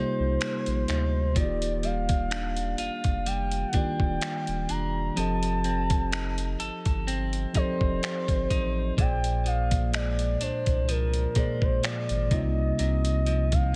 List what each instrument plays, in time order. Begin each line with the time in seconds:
Already playing: tine electric piano C3 G3 A#3 D#4 F4 G4, clean electric guitar C3 A#3 D#4 F4, soft synth lead C5
0.19 sub bass C2
0.41 clean electric guitar A#3, finger snap, closed hi-hat
0.66 sub bass A#1, closed hi-hat
0.88 sub bass D2, clean electric guitar D#4, finger snap, closed hi-hat
1.34 sub bass D#1, tine electric piano D#3 A#3 F4 F#4, clean electric guitar D#3, soft synth lead D5, kick, closed hi-hat
1.39 tine electric piano D5
1.44 tine electric piano G4
1.62 closed hi-hat
1.83 clean electric guitar G3, soft synth lead F5, closed hi-hat
2.09 kick, closed hi-hat
2.31 clean electric guitar D4, finger snap, closed hi-hat
2.57 closed hi-hat
2.78 sub bass F1, clean electric guitar F4, soft synth lead F5, closed hi-hat
3.04 sub bass F1, kick, closed hi-hat
3.26 clean electric guitar G3, soft synth lead G5, closed hi-hat
3.51 closed hi-hat
3.68 tine electric piano D#3, soft synth lead F#5
3.73 sub bass D#1, tine electric piano A#3 F4 G4, clean electric guitar D4, soft synth lead G5, kick, closed hi-hat
3.77 tine electric piano D5
4.00 sub bass D#1, kick
4.21 clean electric guitar G3, finger snap, closed hi-hat
4.47 sub bass D1, closed hi-hat
4.69 sub bass E1, clean electric guitar D4, soft synth lead A#5, closed hi-hat
5.15 sub bass F1, tine electric piano F3 C4 G4 A4, clean electric guitar F3, soft synth lead A5, closed hi-hat
5.20 tine electric piano D#5
5.43 closed hi-hat
5.64 clean electric guitar C4, closed hi-hat
5.90 kick, closed hi-hat
6.12 clean electric guitar D#4, finger snap, closed hi-hat
6.38 closed hi-hat
6.60 sub bass G1, clean electric guitar A4, closed hi-hat
6.85 sub bass G1, kick, closed hi-hat
7.07 clean electric guitar C4, closed hi-hat
7.33 closed hi-hat
7.53 sub bass F1, tine electric piano F3 C4 G4 A4, clean electric guitar D#4, soft synth lead C5, kick, closed hi-hat
7.58 tine electric piano D5
7.81 sub bass F1, kick
8.03 clean electric guitar C4, finger snap, closed hi-hat
8.28 sub bass G1, kick, closed hi-hat
8.50 sub bass A1, clean electric guitar D#4, kick, closed hi-hat
8.96 sub bass A#1, tine electric piano A#2 A#3 G#4 C5, clean electric guitar A#2, soft synth lead G5, kick, closed hi-hat
9.01 tine electric piano D5
9.24 closed hi-hat
9.46 clean electric guitar F3, soft synth lead F5, closed hi-hat
9.71 kick, closed hi-hat
9.93 clean electric guitar G#3, soft synth lead D5, finger snap, closed hi-hat
10.19 closed hi-hat
10.41 sub bass C2, clean electric guitar D4, soft synth lead C5, closed hi-hat
10.66 sub bass C2, kick, closed hi-hat
10.89 clean electric guitar F3, soft synth lead A#4, closed hi-hat
11.14 closed hi-hat
11.34 sub bass A#1, tine electric piano A#2 A#3 G#4 C5, clean electric guitar G#3, kick, closed hi-hat
11.39 tine electric piano D5
11.62 sub bass A#1, soft synth lead C5, kick
11.83 clean electric guitar F3, soft synth lead D5, finger snap, closed hi-hat
12.09 sub bass G#1, closed hi-hat
12.30 sub bass C2, tine electric piano C3 G3 A#3 D#4 F4, clean electric guitar C3, soft synth lead D#5, kick, closed hi-hat
12.34 tine electric piano C#5
12.41 tine electric piano D#5
12.79 sub bass C2, clean electric guitar C3, soft synth lead D#5, closed hi-hat
13.05 closed hi-hat
13.26 clean electric guitar F3, closed hi-hat
13.52 soft synth lead F5, kick, closed hi-hat